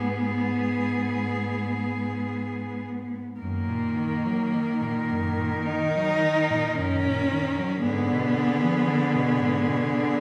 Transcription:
Already playing: G#2 B3 G#4
3.40 F#2 D#3 A#3 A#4
3.69 A#2
3.97 D#3
4.25 F#3
4.53 D#3
4.81 A#2
5.10 F#2
5.38 A#2
5.67 D#3 D#4
5.95 F#3
6.22 D#3
6.51 A#2
6.75 F#2 C#4
7.05 A#2
7.32 D#3
7.58 F#3
7.83 G#2 D3 B3 G#4
8.12 B2
8.37 D3
8.63 F3
8.88 D3
9.15 B2
9.41 G#2
9.67 B2
9.93 D3

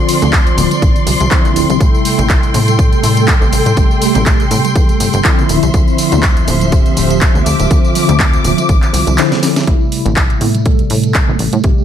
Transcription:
Already playing: D3 F3 C4 F4 D5 C6
0.09 open hi-hat, tambourine
0.22 D2, closed hi-hat, tambourine, low conga
0.33 kick, clap, closed hi-hat, tambourine
0.47 closed hi-hat, tambourine
0.57 D1, open hi-hat, tambourine, low conga
0.71 closed hi-hat, tambourine, high conga
0.82 A1, kick, closed hi-hat, tambourine
0.96 closed hi-hat, tambourine
1.07 C2, open hi-hat, tambourine
1.20 C2, closed hi-hat, tambourine
1.31 D3 F3 C4 E4, kick, clap, closed hi-hat, tambourine, high conga
1.45 closed hi-hat, tambourine, low conga
1.56 D1, open hi-hat, tambourine
1.70 C2, closed hi-hat, tambourine, high conga
1.80 A1 C3 G3 A3 E4 A4 G5, kick, closed hi-hat, tambourine
1.94 tambourine
2.05 open hi-hat, tambourine
2.18 A1, closed hi-hat, tambourine, low conga
2.29 kick, clap, closed hi-hat, tambourine
2.43 closed hi-hat, tambourine
2.54 A2, open hi-hat, tambourine, low conga
2.68 closed hi-hat, tambourine, high conga
2.78 C3 G3 A3 A4, kick, closed hi-hat, tambourine
2.92 A1, closed hi-hat, tambourine
3.03 A2, open hi-hat, tambourine
3.17 closed hi-hat, tambourine
3.27 kick, clap, closed hi-hat, tambourine
3.42 A1, tambourine, low conga
3.53 A1, open hi-hat, tambourine
3.66 A2, closed hi-hat, tambourine, high conga
3.76 A1 C3 G3 A3 G4, kick, closed hi-hat, tambourine
3.91 tambourine
4.02 open hi-hat, tambourine
4.15 A1, closed hi-hat, tambourine, low conga
4.26 kick, clap, closed hi-hat, tambourine
4.40 closed hi-hat, tambourine
4.51 A2, open hi-hat, tambourine, low conga
4.64 closed hi-hat, tambourine, high conga
4.75 E2, kick, closed hi-hat, tambourine
4.89 closed hi-hat, tambourine
5.00 G1, open hi-hat, tambourine
5.13 G1, closed hi-hat, tambourine
5.24 D3 F3 C4 E4, kick, clap, closed hi-hat, tambourine
5.39 tambourine, low conga
5.49 D1 F3 E5, open hi-hat, tambourine
5.63 C2, closed hi-hat, tambourine, high conga
5.73 D2 D3 F3 C4 E4, kick, closed hi-hat, tambourine
5.88 tambourine
5.98 open hi-hat, tambourine
6.12 D2, closed hi-hat, tambourine, low conga
6.23 kick, clap, closed hi-hat, tambourine
6.37 closed hi-hat, tambourine
6.48 D1, open hi-hat, tambourine, low conga
6.61 closed hi-hat, tambourine, high conga
6.71 D3 F3 C4 G4, kick, closed hi-hat, tambourine
6.86 D2, closed hi-hat, tambourine
6.97 D1, open hi-hat, tambourine
7.10 closed hi-hat, tambourine
7.21 kick, clap, closed hi-hat, tambourine
7.35 D2, tambourine, low conga
7.46 D2 D6, open hi-hat, tambourine
7.60 D1, closed hi-hat, tambourine, high conga
7.70 D2 D3 F3 C4 F4, kick, closed hi-hat, tambourine
7.84 tambourine
7.95 open hi-hat, tambourine, high conga
8.09 D2, closed hi-hat, tambourine, low conga
8.20 kick, clap, closed hi-hat, tambourine
8.33 closed hi-hat, tambourine
8.44 D1, open hi-hat, tambourine, low conga
8.58 closed hi-hat, tambourine, high conga
8.69 A1, kick, closed hi-hat, tambourine
8.82 clap, closed hi-hat, tambourine
8.93 C2, open hi-hat, tambourine
9.07 C2, closed hi-hat, tambourine
9.17 D3 F3 C4 E4, snare, clap, closed hi-hat, tambourine
9.31 snare, closed hi-hat, tambourine, low conga
9.43 snare, open hi-hat, tambourine
9.56 snare, closed hi-hat, tambourine, high conga
9.67 A1 C3 G3 A3 E4, kick, closed hi-hat
9.81 tambourine
9.92 open hi-hat
10.05 A1, closed hi-hat, tambourine, low conga
10.16 kick, clap, closed hi-hat, tambourine
10.30 closed hi-hat, tambourine
10.41 A2, open hi-hat, low conga
10.55 closed hi-hat, tambourine, high conga
10.65 C3 G3 A3 A4, kick, closed hi-hat
10.79 A1, closed hi-hat, tambourine
10.90 A2, open hi-hat
11.04 closed hi-hat, tambourine
11.14 kick, clap, closed hi-hat, tambourine
11.28 A1, tambourine, low conga
11.39 A1, open hi-hat
11.53 A2, closed hi-hat, tambourine, high conga
11.63 A1 C3 G3 A3 G4, kick, closed hi-hat, tambourine
11.78 tambourine

